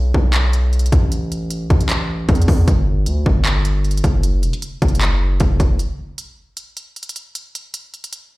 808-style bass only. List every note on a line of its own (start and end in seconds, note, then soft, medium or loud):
0.00 0.12 B1 loud
0.14 0.89 B1 loud
0.92 1.67 A1 loud
1.70 2.26 A1 loud
2.29 2.47 E2 loud
2.48 2.67 E2 loud
2.68 3.08 G1 loud
3.07 3.25 D2 loud
3.26 4.01 G1 loud
4.04 4.44 F#1 loud
4.43 4.53 E1 loud
4.82 5.38 F#1 loud
5.40 5.59 F#1 loud
5.60 5.79 F#1 loud